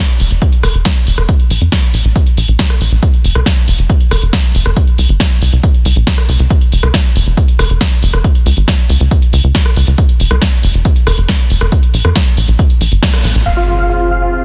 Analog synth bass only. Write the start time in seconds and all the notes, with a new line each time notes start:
0.20 F1
0.31 F1
0.63 F1
0.74 F1
1.07 F1
1.18 F1
1.50 A#1
1.61 F2
1.94 A#1
2.05 A#1
2.37 A#1
2.48 A#1
2.81 A#1
2.92 A#1
3.24 F1
3.35 C2
3.68 F1
3.79 F1
4.11 F1
4.22 F1
4.55 F1
4.66 F1
4.98 C2
5.09 G1
5.42 C2
5.53 C2
5.85 C2
5.96 A#1
6.29 C2
6.40 C2
6.72 F1
6.83 C2
7.16 F1
7.26 F1
7.59 F1
7.70 F1
8.03 F1
8.13 F1
8.46 C#2
8.57 G#1
8.90 C#2
9.00 C#2
9.33 C#2
9.44 C#2
9.77 C#2
9.87 C#2
10.20 F1
10.31 C2
10.63 F1
10.74 F1
11.07 F1
11.18 F1
11.50 F1
11.61 F1
11.94 A#1
12.05 F2
12.37 A#1
12.48 A#1
12.81 A#1
12.92 G1
13.24 A#1
13.35 A#1
13.46 F1